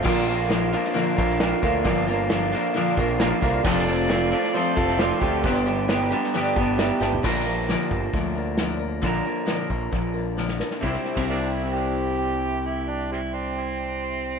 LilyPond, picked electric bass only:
\new Staff \with { instrumentName = "Picked electric bass" } { \clef bass \time 4/4 \key c \major \tempo 4 = 134 bes,,2 r8 bes,,4 d,8 | g,,2 r8 bes,,4 c,8 | f,,2 r8 f,,4 d,8 | g,,2 r8 g,,4 g,,8 |
bes,,4. g,,8 d,2 | bes,,8 r4 bes,,8 bes,,2 | c,16 r8 c,2.~ c,16~ | c,1 | }